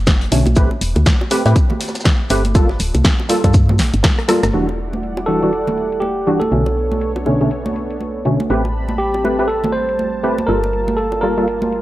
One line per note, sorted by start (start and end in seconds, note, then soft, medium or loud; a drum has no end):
0.00 0.29 F#1 medium
0.07 kick loud
0.07 snare loud
0.07 closed hi-hat medium
0.07 high conga medium
0.07 shaker medium
0.21 closed hi-hat soft
0.31 0.44 B1 loud
0.31 0.44 B2 loud
0.31 0.44 D3 medium
0.31 0.45 A3 medium
0.31 0.45 C#4 loud
0.31 snare soft
0.31 open hi-hat loud
0.31 shaker medium
0.46 0.55 B1 medium
0.46 closed hi-hat medium
0.46 high conga medium
0.56 0.68 A1 medium
0.56 0.69 A3 loud
0.56 0.69 C4 medium
0.56 0.69 G4 medium
0.56 0.69 B4 loud
0.56 kick loud
0.56 closed hi-hat medium
0.56 shaker medium
0.71 high bongo medium
0.81 0.93 E1 medium
0.81 open hi-hat loud
0.81 shaker medium
0.96 1.04 D2 medium
0.96 closed hi-hat medium
0.96 high conga medium
1.06 kick loud
1.06 snare loud
1.06 closed hi-hat medium
1.06 shaker medium
1.21 high bongo medium
1.30 1.43 A3 medium
1.30 1.43 C4 medium
1.30 1.44 G4 medium
1.30 1.44 B4 medium
1.30 open hi-hat loud
1.30 high conga medium
1.30 shaker medium
1.45 1.54 A2 loud
1.45 1.54 A3 medium
1.45 1.54 C4 medium
1.45 1.54 G4 medium
1.45 1.55 B4 loud
1.45 closed hi-hat medium
1.45 closed hi-hat soft
1.56 kick loud
1.56 closed hi-hat medium
1.56 shaker medium
1.70 high conga medium
1.70 low conga medium
1.80 snare medium
1.80 open hi-hat medium
1.80 shaker medium
1.88 snare medium
1.88 shaker medium
1.95 snare medium
1.95 closed hi-hat medium
1.95 shaker medium
2.00 snare medium
2.00 shaker medium
2.04 kick loud
2.04 snare loud
2.04 closed hi-hat medium
2.04 high conga medium
2.04 shaker medium
2.30 2.77 G1 loud
2.30 2.43 A3 loud
2.30 2.43 C4 medium
2.30 2.43 G4 medium
2.30 2.43 B4 loud
2.30 open hi-hat loud
2.30 shaker medium
2.45 closed hi-hat medium
2.45 high conga medium
2.55 2.68 G3 loud
2.55 2.68 A#3 medium
2.55 2.68 F4 medium
2.55 2.68 A4 loud
2.55 kick loud
2.55 closed hi-hat medium
2.55 shaker medium
2.69 snare soft
2.69 high bongo medium
2.79 2.92 D1 medium
2.79 open hi-hat loud
2.79 shaker medium
2.94 3.03 C2 medium
2.94 closed hi-hat medium
2.94 high conga medium
3.04 kick loud
3.04 snare loud
3.04 closed hi-hat medium
3.04 shaker medium
3.20 high bongo medium
3.29 3.42 G3 medium
3.29 3.42 A#3 medium
3.29 3.42 F4 medium
3.29 3.42 A4 loud
3.29 snare loud
3.29 open hi-hat loud
3.29 shaker medium
3.44 3.80 G2 loud
3.44 3.53 G3 medium
3.44 3.53 A#3 medium
3.44 3.53 F4 medium
3.44 3.53 A4 loud
3.44 kick medium
3.44 closed hi-hat medium
3.53 kick loud
3.53 closed hi-hat medium
3.53 shaker medium
3.69 high conga medium
3.69 low conga medium
3.79 3.91 A#1 loud
3.79 snare medium
3.79 open hi-hat loud
3.79 shaker medium
3.94 4.02 G1 medium
3.94 closed hi-hat medium
4.03 kick loud
4.03 cross-stick medium
4.03 snare loud
4.03 closed hi-hat medium
4.03 high conga medium
4.03 shaker medium
4.18 cross-stick medium
4.18 closed hi-hat soft
4.28 4.41 G3 loud
4.28 4.41 A#3 medium
4.28 4.41 F4 medium
4.28 4.41 A4 loud
4.28 cross-stick medium
4.28 snare loud
4.28 open hi-hat loud
4.28 shaker medium
4.43 4.51 G1 loud
4.43 cross-stick medium
4.43 snare medium
4.43 closed hi-hat medium
4.43 high conga medium
4.43 shaker medium
4.53 6.50 E1 medium
4.53 4.66 E3 medium
4.53 4.66 G3 medium
4.53 6.50 G3 medium
4.53 4.66 D4 medium
4.53 6.50 E4 medium
4.53 4.66 F#4 loud
4.53 6.50 D5 medium
4.53 6.50 F#5 medium
4.53 closed hi-hat medium
4.53 crash medium
4.69 high bongo soft
4.93 closed hi-hat soft
4.93 high conga medium
5.03 closed hi-hat medium
5.17 high bongo medium
5.26 5.40 E3 medium
5.26 5.40 G3 medium
5.26 5.40 D4 medium
5.26 5.40 F#4 medium
5.26 6.04 A4 loud
5.42 5.51 E3 medium
5.42 5.51 G3 medium
5.42 5.51 D4 medium
5.42 5.51 F#4 medium
5.42 closed hi-hat soft
5.53 closed hi-hat medium
5.67 high conga medium
5.67 low conga medium
5.78 closed hi-hat soft
5.92 closed hi-hat soft
6.00 6.42 G4 medium
6.00 closed hi-hat medium
6.00 high conga medium
6.27 6.39 E3 medium
6.27 6.40 G3 medium
6.27 6.40 D4 medium
6.27 6.40 F#4 loud
6.27 closed hi-hat soft
6.40 7.11 A4 medium
6.40 closed hi-hat medium
6.40 high conga medium
6.51 8.48 B1 medium
6.51 6.64 B2 medium
6.51 6.64 D3 medium
6.51 6.64 A3 medium
6.51 8.48 B3 medium
6.51 6.65 C#4 loud
6.51 8.48 D4 medium
6.51 8.48 A4 medium
6.51 8.48 C#5 medium
6.51 closed hi-hat medium
6.66 high bongo soft
6.91 closed hi-hat soft
6.91 high conga medium
7.01 closed hi-hat medium
7.16 high bongo medium
7.26 7.38 B2 medium
7.26 7.39 D3 medium
7.26 7.39 A3 medium
7.26 7.39 C#4 medium
7.26 high conga medium
7.40 7.49 B2 medium
7.40 7.49 D3 medium
7.40 7.50 A3 medium
7.40 7.50 C#4 loud
7.40 closed hi-hat soft
7.51 closed hi-hat medium
7.66 high conga medium
7.76 closed hi-hat soft
7.90 closed hi-hat soft
8.00 closed hi-hat medium
8.00 high conga medium
8.25 8.38 B2 medium
8.25 8.38 D3 medium
8.25 8.38 A3 medium
8.25 8.38 C#4 loud
8.25 closed hi-hat soft
8.40 closed hi-hat medium
8.40 high conga medium
8.50 10.46 A1 medium
8.50 11.82 G3 medium
8.50 8.63 A3 medium
8.50 8.63 C4 medium
8.50 10.46 C4 medium
8.50 8.63 G4 medium
8.50 8.63 B4 loud
8.50 11.82 A5 medium
8.50 10.46 B5 medium
8.50 closed hi-hat medium
8.65 high bongo medium
8.89 closed hi-hat soft
8.89 high conga medium
8.98 9.45 G4 medium
8.98 closed hi-hat medium
9.14 high bongo medium
9.24 9.37 A3 medium
9.24 9.37 C4 medium
9.24 9.37 G4 medium
9.24 9.37 B4 medium
9.24 high conga medium
9.39 9.48 A3 medium
9.39 9.48 C4 medium
9.39 9.48 G4 medium
9.39 9.48 B4 loud
9.39 closed hi-hat soft
9.48 9.71 A4 medium
9.48 closed hi-hat medium
9.64 high conga medium
9.64 low conga medium
9.72 10.50 C5 loud
9.72 closed hi-hat soft
9.89 closed hi-hat soft
9.99 closed hi-hat medium
9.99 high conga medium
10.23 10.36 A3 medium
10.23 10.36 C4 medium
10.23 10.36 G4 medium
10.23 10.36 B4 loud
10.23 closed hi-hat soft
10.38 closed hi-hat medium
10.38 high conga medium
10.47 11.82 G1 medium
10.47 10.61 G3 medium
10.47 10.61 A#3 medium
10.47 11.82 A#3 medium
10.47 11.82 F4 medium
10.47 10.61 F4 medium
10.47 10.61 A4 loud
10.47 10.99 A#4 medium
10.47 closed hi-hat medium
10.64 high bongo soft
10.73 closed hi-hat soft
10.88 closed hi-hat soft
10.88 high conga medium
10.97 11.23 A4 medium
10.97 closed hi-hat medium
11.12 high bongo medium
11.21 11.35 G3 medium
11.21 11.35 A#3 medium
11.21 11.35 F4 medium
11.21 11.35 A4 medium
11.21 11.82 A#4 medium
11.37 11.46 G3 medium
11.37 11.46 A#3 medium
11.37 11.46 F4 medium
11.37 11.46 A4 loud
11.37 closed hi-hat soft
11.48 closed hi-hat medium
11.62 high conga medium
11.73 closed hi-hat soft